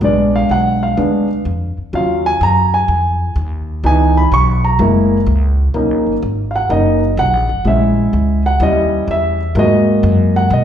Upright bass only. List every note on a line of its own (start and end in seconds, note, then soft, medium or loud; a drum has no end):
0.01 0.48 A#1 medium
0.49 0.96 B1 medium
0.97 1.44 D2 medium
1.45 1.76 F2 medium
1.78 muted upright bass stroke soft
1.93 2.39 D#2 medium
2.41 2.87 F#2 loud
2.88 3.35 F2 medium
3.36 3.82 D#2 medium
3.84 4.30 C#2 medium
4.32 4.78 B1 loud
4.79 5.26 F#1 loud
5.27 5.73 C#2 loud
5.74 5.91 B1 medium
5.91 6.06 A#1 medium
6.07 6.21 F#1 medium
6.22 6.69 G#1 medium
6.70 7.16 F#1 loud
7.17 7.33 B1 loud
7.33 7.49 A#1 medium
7.49 7.64 F#1 medium
7.65 8.11 A#1 medium
8.13 8.59 C#2 medium
8.60 9.06 D#2 loud
9.08 9.54 E2 loud
9.55 10.02 G#2 loud
10.03 10.50 F#2 loud
10.50 10.64 B2 loud